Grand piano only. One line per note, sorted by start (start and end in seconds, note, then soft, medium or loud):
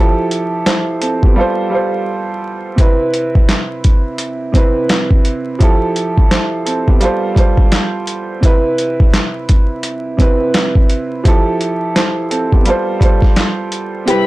0.00 1.23 F3 medium
0.00 0.31 E4 medium
0.00 0.32 G4 medium
0.00 0.33 A4 loud
0.66 1.00 E4 medium
0.66 1.00 C5 medium
1.01 1.22 C4 medium
1.01 1.22 A4 medium
1.24 1.57 B3 medium
1.24 1.57 G4 medium
1.36 1.68 G3 medium
1.36 1.69 F4 medium
1.36 1.70 A4 medium
1.40 1.71 C5 loud
1.70 2.67 G3 medium
1.70 2.67 F4 medium
1.70 2.68 A4 medium
1.74 2.69 C5 medium
2.76 4.05 C3 medium
2.76 4.05 C4 medium
2.76 4.06 E4 medium
2.81 4.07 B4 loud
4.52 5.49 C3 medium
4.52 5.50 C4 medium
4.52 5.51 E4 medium
4.57 5.52 B4 medium
5.59 6.87 F3 medium
5.59 5.96 E4 medium
5.59 5.96 G4 medium
5.63 5.97 A4 loud
6.31 6.65 E4 medium
6.31 6.64 C5 medium
6.66 6.86 C4 medium
6.66 6.86 A4 medium
6.88 7.22 B3 medium
6.88 7.21 G4 medium
7.00 7.33 G3 loud
7.00 7.34 F4 medium
7.00 7.34 A4 medium
7.05 7.35 C5 loud
7.34 8.31 G3 medium
7.34 8.32 F4 medium
7.34 8.33 A4 medium
7.39 8.34 C5 medium
8.41 9.69 C3 medium
8.41 9.70 C4 medium
8.41 9.71 E4 medium
8.45 9.72 B4 loud
10.17 11.14 C3 medium
10.17 11.15 C4 medium
10.17 11.15 E4 medium
10.22 11.16 B4 loud
11.24 12.52 F3 medium
11.24 11.60 E4 medium
11.24 11.61 G4 medium
11.28 11.62 A4 loud
11.96 12.30 E4 medium
11.96 12.29 C5 medium
12.30 12.51 C4 medium
12.30 12.51 A4 medium
12.53 12.87 B3 medium
12.53 12.86 G4 medium
12.65 12.98 G3 loud
12.65 12.98 F4 medium
12.65 12.99 A4 medium
12.70 13.00 C5 loud
12.99 13.96 G3 medium
12.99 13.97 F4 medium
12.99 13.98 A4 medium
13.04 13.99 C5 medium
14.05 14.27 C3 medium
14.05 14.27 C4 medium
14.05 14.27 E4 medium
14.10 14.27 B4 loud